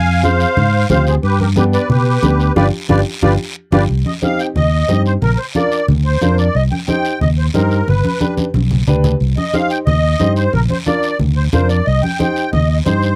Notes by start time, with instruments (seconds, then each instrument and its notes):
Already playing: fingered electric bass F2, accordion F5 G#5
0.23 upright piano C4 F4 G#4, accordion C5 F5, high conga, short guiro
0.40 short guiro
0.57 fingered electric bass G#2, low conga, long guiro
0.90 fingered electric bass D2, upright piano C4 F4 G4, accordion C5 F5, high conga, low conga, short guiro
1.07 accordion G#4 C5, short guiro
1.23 fingered electric bass G2, accordion G4 B4, long guiro
1.40 accordion G4 A#4, high conga
1.56 upright piano B3 D4 G4, accordion G4 B4, high conga, short guiro
1.73 accordion B4 D5, short guiro
1.90 fingered electric bass B2, accordion G4 B4, low conga, long guiro
2.22 fingered electric bass D2, upright piano B3 D4 G4, high conga, short guiro
2.40 short guiro
2.56 fingered electric bass G1, upright piano D4 F4 G4, accordion G4 B4 D5, high conga, long guiro
2.89 fingered electric bass G1, upright piano D4 F4 G4, accordion G4 B4 D5, high conga, long guiro
3.22 fingered electric bass G1, upright piano D4 F4 G4, accordion G4 B4 D5, high conga, long guiro
3.72 fingered electric bass G1, upright piano D4 F4 G4, accordion G4 B4 D5, high conga, long guiro
3.89 fingered electric bass C2, long guiro
4.06 accordion D#5, high conga
4.22 upright piano C4 D#4 G4, accordion F5, high conga, short guiro
4.39 accordion G5, short guiro
4.56 fingered electric bass D#2, accordion D#5, low conga, long guiro
4.88 fingered electric bass G2, upright piano C4 D#4 G4, high conga, short guiro
5.06 accordion C5, short guiro
5.22 fingered electric bass A#1, accordion A#4, low conga, long guiro
5.38 accordion C5
5.55 upright piano D4 F4 A#4, accordion D5, high conga, short guiro
5.72 short guiro
5.88 fingered electric bass D2, low conga, long guiro
6.05 accordion C5
6.21 fingered electric bass F2, upright piano D4 F4 A#4, accordion C5, high conga, short guiro
6.38 accordion D5, short guiro
6.55 fingered electric bass C2, accordion D#5, long guiro
6.72 accordion G5, high conga
6.88 upright piano D#4 G4 C5, accordion G5, high conga, short guiro
7.05 short guiro
7.21 fingered electric bass D#2, accordion D#5, low conga, long guiro
7.38 accordion C5
7.54 fingered electric bass G2, upright piano D#4 G4 C5, accordion A#4, high conga, short guiro
7.71 short guiro
7.88 fingered electric bass G1, accordion B4, low conga, long guiro
8.05 high conga
8.20 upright piano D4 G4 B4, high conga, short guiro
8.37 high conga, short guiro
8.54 fingered electric bass B1, high conga, long guiro
8.71 low conga
8.87 fingered electric bass D2, upright piano D4 G4 B4, low conga, short guiro
9.04 low conga, short guiro
9.20 fingered electric bass C2, long guiro
9.37 accordion D#5, high conga
9.53 upright piano D#4 G4 C5, accordion F5, high conga, short guiro
9.70 accordion G5, short guiro
9.86 fingered electric bass D#2, accordion D#5, low conga, long guiro
10.19 fingered electric bass G2, upright piano D#4 G4 C5, high conga, short guiro
10.36 accordion C5, short guiro
10.53 fingered electric bass A#1, accordion A#4, low conga, long guiro
10.70 accordion C5, high conga
10.86 upright piano D4 F4 A#4, accordion D5, high conga, short guiro
11.03 short guiro
11.19 fingered electric bass D2, low conga, long guiro
11.36 accordion C5
11.53 fingered electric bass F2, upright piano D4 F4 A#4, accordion C5, high conga, low conga, short guiro
11.69 accordion D5, short guiro
11.86 fingered electric bass C2, accordion D#5, long guiro
12.03 accordion G5, high conga
12.19 upright piano D#4 G4 C5, accordion G5, high conga, short guiro
12.36 short guiro
12.53 fingered electric bass D#2, accordion D#5, low conga, long guiro
12.69 accordion D#5
12.86 fingered electric bass G2, upright piano D#4 G4 C5, accordion C5, high conga, short guiro
13.03 short guiro